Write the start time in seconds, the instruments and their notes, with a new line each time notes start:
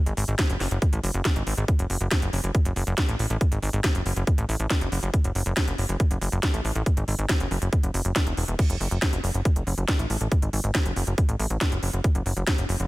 0.06 analog synth bass G#1, closed hi-hat
0.17 analog synth bass G#1, open hi-hat
0.28 analog synth bass G#1, closed hi-hat
0.39 kick, snare, closed hi-hat
0.50 analog synth bass F#1, closed hi-hat
0.60 analog synth bass F#1, snare, open hi-hat
0.71 analog synth bass F#1, closed hi-hat
0.82 kick, closed hi-hat
0.93 analog synth bass A1, closed hi-hat
1.03 analog synth bass F#1, open hi-hat
1.14 analog synth bass F#1, closed hi-hat
1.25 kick, snare, closed hi-hat
1.36 analog synth bass G#1, closed hi-hat
1.47 analog synth bass G#1, open hi-hat
1.57 analog synth bass G#1, closed hi-hat
1.68 kick, closed hi-hat
1.79 analog synth bass F#1, closed hi-hat
1.90 analog synth bass F#1, open hi-hat
2.01 analog synth bass F#1, closed hi-hat
2.11 kick, snare, closed hi-hat
2.22 analog synth bass F#1, closed hi-hat
2.33 analog synth bass F#1, open hi-hat
2.44 analog synth bass F#1, closed hi-hat
2.55 kick, closed hi-hat
2.65 analog synth bass F#1, closed hi-hat
2.76 analog synth bass F#1, open hi-hat
2.87 analog synth bass F#1, closed hi-hat
2.98 kick, snare, closed hi-hat
3.09 analog synth bass A1, closed hi-hat
3.19 analog synth bass A1, open hi-hat
3.30 analog synth bass A1, closed hi-hat
3.41 kick, closed hi-hat
3.52 analog synth bass G#1, closed hi-hat
3.62 analog synth bass G#1, open hi-hat
3.73 analog synth bass G#1, closed hi-hat
3.84 kick, snare, closed hi-hat
3.95 analog synth bass F#1, closed hi-hat
4.06 analog synth bass F#1, open hi-hat
4.16 analog synth bass F#1, closed hi-hat
4.27 kick, closed hi-hat
4.38 analog synth bass A1, closed hi-hat
4.49 analog synth bass A1, open hi-hat
4.60 analog synth bass A1, closed hi-hat
4.70 kick, snare, closed hi-hat
4.81 analog synth bass F#1, closed hi-hat
4.92 analog synth bass F#1, open hi-hat
5.03 analog synth bass F#1, closed hi-hat
5.14 kick, closed hi-hat
5.24 analog synth bass F#1, closed hi-hat
5.35 analog synth bass F#1, open hi-hat
5.46 analog synth bass F#1, closed hi-hat
5.57 kick, snare, closed hi-hat
5.68 analog synth bass F#1, closed hi-hat
5.78 analog synth bass F#1, open hi-hat
5.89 analog synth bass F#1, closed hi-hat
6.00 kick, closed hi-hat
6.11 analog synth bass F#1, closed hi-hat
6.21 analog synth bass F#1, open hi-hat
6.32 analog synth bass F#1, closed hi-hat
6.43 kick, snare, closed hi-hat
6.54 analog synth bass A1, closed hi-hat
6.65 analog synth bass A1, open hi-hat
6.75 analog synth bass A1, closed hi-hat
6.86 kick, closed hi-hat
6.97 analog synth bass G#1, closed hi-hat
7.08 analog synth bass G#1, open hi-hat
7.19 analog synth bass G#1, closed hi-hat
7.29 kick, snare, closed hi-hat
7.40 analog synth bass F#1, closed hi-hat
7.51 analog synth bass F#1, open hi-hat
7.62 analog synth bass F#1, closed hi-hat
7.73 kick, closed hi-hat
7.83 analog synth bass F#1, closed hi-hat
7.94 analog synth bass F#1, open hi-hat
8.05 analog synth bass F#1, closed hi-hat
8.16 kick, snare, closed hi-hat
8.27 analog synth bass E1, closed hi-hat
8.37 analog synth bass E1, open hi-hat
8.48 analog synth bass E1, closed hi-hat
8.59 kick, closed hi-hat, crash
8.70 analog synth bass F#1, closed hi-hat
8.80 analog synth bass F#1, open hi-hat
8.91 analog synth bass F#1, closed hi-hat
9.02 kick, snare, closed hi-hat
9.13 analog synth bass F#1, closed hi-hat
9.24 analog synth bass F#1, open hi-hat
9.34 analog synth bass F#1, closed hi-hat
9.45 kick, closed hi-hat
9.56 analog synth bass F#1, closed hi-hat
9.67 analog synth bass F#1, open hi-hat
9.78 analog synth bass F#1, closed hi-hat
9.88 kick, snare, closed hi-hat
9.99 analog synth bass A1, closed hi-hat
10.10 analog synth bass A1, open hi-hat
10.21 analog synth bass A1, closed hi-hat
10.32 kick, closed hi-hat
10.42 analog synth bass G#1, closed hi-hat
10.53 analog synth bass G#1, open hi-hat
10.64 analog synth bass G#1, closed hi-hat
10.75 kick, snare, closed hi-hat
10.86 analog synth bass F#1, closed hi-hat
10.96 analog synth bass F#1, open hi-hat
11.07 analog synth bass F#1, closed hi-hat
11.18 kick, closed hi-hat
11.29 analog synth bass A1, closed hi-hat
11.39 analog synth bass A1, open hi-hat
11.50 analog synth bass A1, closed hi-hat
11.61 kick, snare, closed hi-hat
11.72 analog synth bass F#1, closed hi-hat
11.83 analog synth bass F#1, open hi-hat
11.93 analog synth bass F#1, closed hi-hat
12.04 kick, closed hi-hat
12.15 analog synth bass F#1, closed hi-hat
12.26 analog synth bass F#1, open hi-hat
12.37 analog synth bass F#1, closed hi-hat
12.47 kick, snare, closed hi-hat
12.58 analog synth bass F#1, closed hi-hat
12.69 analog synth bass F#1, open hi-hat
12.80 analog synth bass F#1, closed hi-hat